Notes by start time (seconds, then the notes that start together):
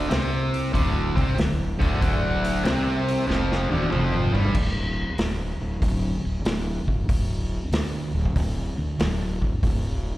0.09 C2 C3 C4, snare, open hi-hat
0.54 open hi-hat
0.73 D1 D2 D3, kick, open hi-hat
1.17 C2 C3 C4, kick, open hi-hat
1.36 D1 D2, snare, open hi-hat
1.79 D1 D2 D3, kick, open hi-hat
2.00 D1 D2 D3, kick, open hi-hat
2.44 open hi-hat
2.63 C2 C3 C4, snare, open hi-hat
3.08 open hi-hat
3.27 F1 F2 F3, snare
3.52 snare
3.70 D1 D2 D3, high tom
3.82 high tom
3.91 F1 F2 F3, mid tom
4.14 mid tom
4.33 G1 G2 G3, floor tom
4.45 floor tom
4.55 D1, kick, crash
5.18 D1, snare, open hi-hat
5.60 D1
5.82 D1, kick, open hi-hat
6.24 D1
6.44 D1, snare, open hi-hat
6.88 D1, kick
7.09 D1, kick, open hi-hat
7.72 D2, snare, open hi-hat
8.14 D1
8.26 kick
8.36 D1, kick, open hi-hat
8.78 D2
8.99 D1, snare, open hi-hat
9.42 kick
9.63 D1, kick, open hi-hat